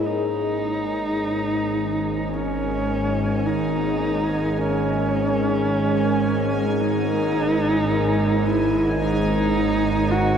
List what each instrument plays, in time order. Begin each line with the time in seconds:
Already playing: ambient pad G#4 A#4 C#5 D#5
0.00 synth drone G#1 G#2, synth texture G#5
0.06 horsehead fiddle D#4
2.34 horsehead fiddle C#4
3.46 horsehead fiddle D#4
4.58 horsehead fiddle C#4
6.80 horsehead fiddle D#4
8.45 horsehead fiddle E4
9.03 horsehead fiddle D#4
10.11 horsehead fiddle F#4